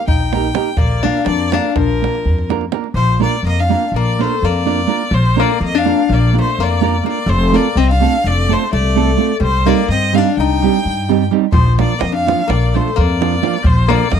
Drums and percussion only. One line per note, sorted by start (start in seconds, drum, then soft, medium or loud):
0.08 davul low medium
0.20 davul high soft
0.33 davul high medium
0.44 davul high soft
0.55 davul high medium
0.77 davul low medium
0.90 davul high soft
1.03 davul high medium
1.15 davul high soft
1.26 davul high medium
1.40 davul high soft
1.52 davul high medium
1.65 davul high soft
1.76 davul high medium
1.76 davul low medium
1.90 davul high soft
2.04 davul high medium
2.15 davul high soft
2.26 davul low medium
2.39 davul high soft
2.50 davul high medium
2.61 davul high soft
2.72 davul high medium
2.84 davul high soft
11.52 davul low loud
11.66 davul high soft
11.79 davul high medium
12.01 davul high medium
12.14 davul high soft
12.28 davul high medium
12.39 davul high soft
12.50 davul high medium
12.88 davul high soft
12.98 davul low medium
13.10 davul high soft
13.22 davul high medium
13.32 davul high soft
13.43 davul high medium
13.54 davul high soft
13.64 davul low medium
13.90 davul high medium
14.12 davul high medium